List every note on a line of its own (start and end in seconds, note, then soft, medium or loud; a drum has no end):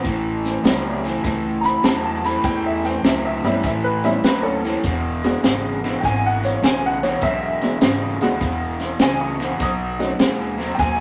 0.04 0.57 A1 medium
0.04 0.60 A2 medium
0.04 0.61 E3 medium
0.04 kick loud
0.04 snare soft
0.04 closed hi-hat medium
0.45 snare soft
0.45 closed hi-hat medium
0.64 1.16 C#2 medium
0.64 1.00 A2 medium
0.64 1.01 F#3 medium
0.64 1.00 G3 medium
0.64 1.01 B3 medium
0.64 1.01 C#4 medium
0.64 1.01 E4 medium
0.64 snare loud
0.64 closed hi-hat medium
1.03 1.22 A2 medium
1.03 1.22 E3 medium
1.03 snare soft
1.03 closed hi-hat medium
1.24 1.76 C#2 medium
1.24 1.80 A2 medium
1.24 1.80 E3 medium
1.24 kick loud
1.24 snare soft
1.24 closed hi-hat medium
1.61 1.66 A#5 medium
1.61 snare soft
1.61 closed hi-hat medium
1.65 1.84 B5 loud
1.83 2.36 E2 medium
1.83 2.20 A2 medium
1.83 2.20 F#3 medium
1.83 2.04 A5 medium
1.83 snare loud
1.83 closed hi-hat medium
2.05 2.24 A5 medium
2.24 2.42 A2 medium
2.24 2.43 E3 medium
2.24 2.44 B5 medium
2.24 snare soft
2.24 closed hi-hat medium
2.44 2.96 E2 medium
2.44 3.00 A2 medium
2.44 3.00 E3 medium
2.44 2.64 G5 medium
2.44 kick loud
2.44 snare soft
2.44 closed hi-hat medium
2.66 2.85 E5 medium
2.85 3.04 G5 medium
2.85 snare soft
2.85 closed hi-hat medium
3.03 3.38 C#2 medium
3.03 3.40 A2 medium
3.03 3.40 F#3 medium
3.03 3.24 E5 medium
3.03 snare loud
3.03 closed hi-hat medium
3.25 3.43 E5 medium
3.42 3.60 G1 medium
3.42 3.62 A2 medium
3.42 3.62 E3 medium
3.42 3.62 G3 medium
3.42 3.63 B3 medium
3.42 3.63 C#4 medium
3.42 3.63 E4 medium
3.42 3.63 E5 medium
3.42 snare soft
3.42 closed hi-hat medium
3.63 4.15 A1 medium
3.63 4.20 A2 medium
3.63 4.20 E3 medium
3.63 3.84 E5 medium
3.63 kick loud
3.63 snare soft
3.63 closed hi-hat medium
3.84 4.03 B4 loud
4.04 4.22 G3 medium
4.04 4.22 B3 medium
4.04 4.22 C#4 medium
4.04 4.22 E4 medium
4.04 4.24 E5 medium
4.04 snare soft
4.04 closed hi-hat medium
4.22 4.74 D#2 medium
4.22 4.60 A2 medium
4.22 4.61 F#3 medium
4.22 4.43 B4 loud
4.22 snare loud
4.22 closed hi-hat medium
4.43 4.74 C#4 medium
4.43 4.75 A4 medium
4.64 4.82 A2 medium
4.64 4.82 E3 medium
4.64 snare soft
4.64 closed hi-hat medium
4.84 5.35 E1 medium
4.84 5.39 E2 medium
4.84 5.40 B2 medium
4.84 kick loud
4.84 snare soft
4.84 closed hi-hat medium
5.24 5.99 G#3 medium
5.24 5.99 B3 medium
5.24 5.99 D4 medium
5.24 6.00 F#4 medium
5.24 snare soft
5.24 closed hi-hat medium
5.42 5.94 G#1 medium
5.42 5.79 E2 medium
5.42 5.79 C#3 medium
5.42 snare loud
5.42 closed hi-hat medium
5.84 6.01 E2 medium
5.84 6.01 B2 medium
5.84 snare soft
5.84 closed hi-hat medium
6.00 6.54 G#1 medium
6.00 6.59 E2 medium
6.00 6.59 B2 medium
6.00 6.05 G5 medium
6.00 kick loud
6.00 closed hi-hat medium
6.05 6.23 G#5 loud
6.05 snare soft
6.26 6.44 F#5 medium
6.43 6.63 C#5 medium
6.43 snare soft
6.43 closed hi-hat medium
6.62 7.14 B1 medium
6.62 6.98 E2 medium
6.62 6.99 C#3 medium
6.62 6.83 G#5 medium
6.62 snare loud
6.62 closed hi-hat medium
6.86 7.04 F#5 medium
7.03 7.21 E2 medium
7.03 7.21 B2 medium
7.03 7.22 C#5 medium
7.03 snare soft
7.03 closed hi-hat medium
7.21 7.73 B1 medium
7.21 7.78 E2 medium
7.21 7.78 B2 medium
7.21 7.80 E5 loud
7.21 kick loud
7.21 snare soft
7.21 closed hi-hat medium
7.61 8.18 G#3 medium
7.61 8.18 B3 medium
7.61 8.18 D4 medium
7.61 8.18 F#4 medium
7.61 snare soft
7.61 closed hi-hat medium
7.81 8.16 G#1 medium
7.81 8.17 E2 medium
7.81 8.17 C#3 medium
7.81 snare loud
7.81 closed hi-hat medium
8.21 8.39 D2 medium
8.21 8.39 E2 medium
8.21 8.39 B2 medium
8.21 8.39 G#3 medium
8.21 8.39 B3 medium
8.21 8.40 D4 medium
8.21 8.40 F#4 medium
8.21 snare soft
8.21 closed hi-hat medium
8.40 8.92 E1 medium
8.40 8.96 E2 medium
8.40 8.97 B2 medium
8.40 kick loud
8.40 snare soft
8.40 closed hi-hat medium
8.80 snare soft
8.80 closed hi-hat medium
8.99 9.52 C#2 medium
8.99 9.36 E2 medium
8.99 9.36 C#3 medium
8.99 9.21 G#5 loud
8.99 snare loud
8.99 closed hi-hat medium
9.21 9.59 C#6 medium
9.39 9.58 E2 medium
9.39 9.58 B2 medium
9.39 snare soft
9.39 closed hi-hat medium
9.60 10.11 B1 medium
9.60 10.15 B2 medium
9.60 10.16 F#3 medium
9.60 10.19 D#6 loud
9.60 kick loud
9.60 snare soft
9.60 closed hi-hat medium
9.99 10.17 A3 medium
9.99 10.17 C#4 medium
9.99 10.17 D#4 medium
9.99 10.18 F#4 medium
9.99 snare soft
9.99 closed hi-hat medium
10.19 10.71 D#2 medium
10.19 10.55 B2 medium
10.19 10.55 G#3 medium
10.19 snare loud
10.19 closed hi-hat medium
10.58 10.76 B2 medium
10.58 10.77 F#3 medium
10.58 snare soft
10.58 closed hi-hat medium
10.75 11.00 B2 medium
10.75 11.00 F#3 medium
10.75 10.79 G5 medium
10.79 11.00 D#2 medium
10.79 10.98 G#5 loud
10.79 kick loud
10.79 snare soft
10.79 closed hi-hat medium